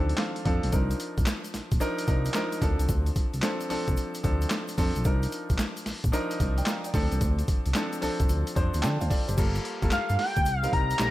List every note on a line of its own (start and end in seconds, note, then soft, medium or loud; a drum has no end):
0.00 0.13 D2 medium
0.00 0.74 D#3 medium
0.00 0.45 F3 medium
0.00 0.45 C4 medium
0.00 0.46 D4 medium
0.00 0.46 A4 loud
0.00 0.15 G5 medium
0.00 0.75 A5 medium
0.09 closed hi-hat soft
0.17 0.44 F5 medium
0.17 snare loud
0.17 clap medium
0.17 closed hi-hat medium
0.36 closed hi-hat medium
0.45 0.60 F2 medium
0.45 0.70 F3 medium
0.45 0.70 C4 medium
0.45 0.70 D4 medium
0.45 0.70 A4 loud
0.45 0.71 F5 medium
0.45 kick medium
0.45 closed hi-hat medium
0.63 0.71 A#1 loud
0.63 closed hi-hat medium
0.72 0.95 C2 loud
0.72 1.69 F3 medium
0.72 1.70 D4 medium
0.72 1.70 D#4 medium
0.72 1.70 A#4 medium
0.72 kick loud
0.72 closed hi-hat medium
0.72 shaker medium
0.91 closed hi-hat medium
0.91 shaker soft
1.00 closed hi-hat medium
1.00 shaker medium
1.18 1.25 A#1 medium
1.18 kick medium
1.18 closed hi-hat soft
1.18 shaker soft
1.26 snare loud
1.26 clap loud
1.26 closed hi-hat medium
1.26 shaker medium
1.44 closed hi-hat soft
1.44 shaker medium
1.54 1.61 A#1 soft
1.54 snare medium
1.54 closed hi-hat medium
1.54 shaker soft
1.72 1.79 A#1 medium
1.72 kick medium
1.72 closed hi-hat medium
1.72 shaker soft
1.80 2.05 F3 loud
1.80 2.05 D4 loud
1.80 2.05 D#4 medium
1.80 2.05 A#4 loud
1.80 closed hi-hat medium
1.80 shaker medium
1.98 closed hi-hat medium
1.98 shaker soft
2.07 2.30 C2 medium
2.07 2.32 F3 medium
2.07 2.32 D4 medium
2.07 2.32 D#4 medium
2.07 2.33 A#4 medium
2.07 kick medium
2.07 closed hi-hat medium
2.07 shaker soft
2.25 closed hi-hat medium
2.25 shaker medium
2.34 2.60 F3 medium
2.34 2.60 D4 medium
2.34 2.62 D#4 medium
2.34 2.62 A#4 loud
2.34 snare loud
2.34 clap medium
2.34 closed hi-hat medium
2.34 shaker medium
2.52 closed hi-hat medium
2.52 shaker soft
2.61 2.76 D2 medium
2.61 3.35 F3 medium
2.61 3.35 C4 medium
2.61 3.35 D4 medium
2.61 3.35 A4 medium
2.61 kick loud
2.61 closed hi-hat medium
2.61 shaker soft
2.79 2.87 C2 medium
2.79 closed hi-hat medium
2.79 shaker medium
2.89 3.11 D2 loud
2.89 kick loud
2.89 closed hi-hat medium
2.89 shaker medium
3.06 closed hi-hat medium
3.06 shaker soft
3.16 kick medium
3.16 closed hi-hat medium
3.16 shaker soft
3.34 3.41 C2 loud
3.34 closed hi-hat soft
3.34 shaker soft
3.42 3.67 F3 medium
3.42 3.67 C4 medium
3.42 3.67 D4 medium
3.42 3.68 A4 loud
3.42 snare loud
3.42 clap loud
3.42 closed hi-hat medium
3.42 shaker medium
3.61 closed hi-hat soft
3.61 shaker medium
3.69 3.77 C2 soft
3.69 4.18 F3 medium
3.69 4.19 C4 medium
3.69 4.19 D4 medium
3.69 4.19 A4 loud
3.69 open hi-hat medium
3.69 shaker soft
3.88 3.95 C2 medium
3.88 kick medium
3.88 closed hi-hat medium
3.88 shaker soft
3.97 closed hi-hat medium
3.97 shaker medium
4.15 closed hi-hat medium
4.15 shaker soft
4.23 4.46 D2 medium
4.23 4.73 F3 medium
4.23 4.73 C4 medium
4.23 4.73 D4 medium
4.23 4.73 A4 medium
4.23 kick medium
4.23 closed hi-hat medium
4.23 shaker soft
4.41 closed hi-hat medium
4.41 shaker medium
4.50 snare loud
4.50 clap medium
4.50 closed hi-hat medium
4.50 shaker medium
4.68 closed hi-hat soft
4.68 shaker medium
4.77 4.92 F2 medium
4.77 5.02 F3 medium
4.77 5.03 C4 medium
4.77 5.03 D4 medium
4.77 5.03 A4 loud
4.77 kick medium
4.77 open hi-hat medium
4.77 shaker soft
4.96 5.04 A#1 medium
4.96 closed hi-hat medium
4.96 shaker medium
5.05 5.27 C2 loud
5.05 6.02 F3 medium
5.05 6.02 D4 medium
5.05 6.02 D#4 medium
5.05 6.03 A#4 medium
5.05 kick loud
5.05 closed hi-hat medium
5.05 shaker medium
5.23 closed hi-hat medium
5.23 shaker soft
5.32 closed hi-hat medium
5.32 shaker soft
5.50 5.58 A#1 medium
5.50 kick medium
5.50 closed hi-hat soft
5.50 shaker soft
5.58 snare loud
5.58 clap medium
5.58 closed hi-hat medium
5.58 shaker medium
5.77 closed hi-hat soft
5.77 shaker medium
5.86 5.93 A#1 soft
5.86 snare medium
5.86 open hi-hat medium
5.86 shaker soft
6.04 6.12 A#1 medium
6.04 kick medium
6.04 closed hi-hat medium
6.04 shaker soft
6.12 6.37 F3 loud
6.12 6.37 D4 loud
6.12 6.38 D#4 medium
6.12 6.38 A#4 loud
6.12 closed hi-hat medium
6.12 shaker medium
6.31 closed hi-hat medium
6.31 shaker medium
6.40 6.62 C2 medium
6.40 kick medium
6.40 closed hi-hat medium
6.40 shaker soft
6.58 6.67 D5 medium
6.58 6.67 G5 medium
6.58 closed hi-hat medium
6.58 shaker soft
6.66 6.84 F5 medium
6.66 6.84 A#5 medium
6.66 snare loud
6.66 clap medium
6.66 closed hi-hat medium
6.66 shaker medium
6.84 7.11 D5 medium
6.84 7.11 G5 medium
6.84 closed hi-hat medium
6.84 shaker medium
6.93 7.08 D2 loud
6.93 7.67 F3 medium
6.93 7.68 C4 medium
6.93 7.68 D4 medium
6.93 7.68 A4 loud
6.93 kick medium
6.93 open hi-hat medium
6.93 shaker soft
7.12 7.20 C2 medium
7.12 closed hi-hat medium
7.12 shaker medium
7.21 7.43 D2 loud
7.21 kick loud
7.21 closed hi-hat medium
7.21 shaker medium
7.39 closed hi-hat medium
7.39 shaker soft
7.48 kick medium
7.48 closed hi-hat medium
7.48 shaker soft
7.66 7.74 C2 medium
7.66 closed hi-hat medium
7.66 shaker soft
7.74 8.00 F3 medium
7.74 8.00 C4 medium
7.74 8.00 D4 medium
7.74 8.00 A4 loud
7.74 snare loud
7.74 clap loud
7.74 closed hi-hat medium
7.74 shaker medium
7.93 closed hi-hat soft
7.93 shaker medium
8.01 8.10 C2 soft
8.01 8.51 F3 loud
8.01 8.51 C4 medium
8.01 8.51 D4 medium
8.01 8.52 A4 loud
8.01 open hi-hat medium
8.01 shaker soft
8.20 8.28 C2 medium
8.20 kick medium
8.20 closed hi-hat medium
8.20 shaker soft
8.29 8.44 D2 loud
8.29 closed hi-hat medium
8.29 shaker medium
8.47 closed hi-hat medium
8.47 shaker medium
8.55 8.71 F2 medium
8.55 9.05 F3 medium
8.55 9.05 C4 medium
8.55 9.05 D4 medium
8.55 8.83 C5 medium
8.55 kick medium
8.55 closed hi-hat medium
8.55 shaker soft
8.74 8.82 D2 medium
8.74 closed hi-hat medium
8.74 shaker medium
8.83 8.98 D3 medium
8.83 9.00 D5 medium
8.83 9.08 G5 medium
8.83 9.00 A5 medium
8.83 snare loud
8.83 clap medium
8.83 closed hi-hat medium
8.83 shaker medium
9.01 9.09 D2 medium
9.01 9.10 C5 medium
9.01 9.09 F5 medium
9.01 closed hi-hat soft
9.01 shaker medium
9.10 9.27 A4 medium
9.10 9.27 D5 medium
9.10 9.35 F5 medium
9.10 kick medium
9.10 open hi-hat medium
9.10 shaker soft
9.28 9.36 F1 medium
9.28 9.54 G4 medium
9.28 9.54 C5 medium
9.28 closed hi-hat medium
9.28 shaker medium
9.37 9.59 G1 loud
9.37 9.75 G3 medium
9.37 9.75 A#3 medium
9.37 9.75 F4 medium
9.37 9.75 A4 medium
9.37 kick loud
9.37 closed hi-hat medium
9.37 crash loud
9.37 shaker medium
9.55 closed hi-hat medium
9.55 shaker soft
9.65 closed hi-hat medium
9.81 9.90 G1 medium
9.81 10.45 G3 medium
9.81 10.46 A#3 medium
9.81 10.46 F4 medium
9.81 10.46 A4 medium
9.81 kick medium
9.81 closed hi-hat soft
9.81 shaker soft
9.91 9.99 G2 soft
9.91 10.17 F5 loud
9.91 snare loud
9.91 clap medium
9.91 closed hi-hat medium
9.91 shaker medium
10.09 10.17 G2 loud
10.09 closed hi-hat soft
10.09 shaker medium
10.19 10.59 G5 loud
10.19 snare medium
10.19 open hi-hat medium
10.36 10.48 D2 medium
10.36 kick medium
10.36 closed hi-hat medium
10.36 shaker soft
10.45 10.68 C2 loud
10.45 closed hi-hat medium
10.45 shaker medium
10.59 10.96 G3 medium
10.59 10.75 F5 loud
10.63 10.96 C4 medium
10.63 10.96 D#4 medium
10.63 10.96 A#4 medium
10.63 closed hi-hat medium
10.63 shaker soft
10.73 10.95 C2 medium
10.73 11.11 A#5 loud
10.73 kick medium
10.73 closed hi-hat medium
10.90 closed hi-hat medium
10.90 shaker medium
10.99 11.11 A#1 medium
10.99 11.11 G3 medium
10.99 11.11 C4 medium
10.99 11.11 D#4 medium
10.99 11.09 A4 medium
10.99 snare loud
10.99 clap medium
10.99 closed hi-hat medium
10.99 shaker medium
11.07 11.11 A#4 medium